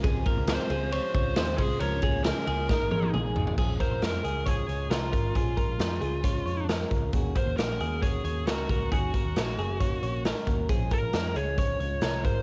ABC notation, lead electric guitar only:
X:1
M:4/4
L:1/8
Q:1/4=135
K:Bbm
V:1 name="Lead electric guitar"
z2 c2 c3 A | d2 B4 z2 | z c B2 A2 F2 | F6 z2 |
z c B2 A2 G2 | G6 z2 | z B2 d d3 c |]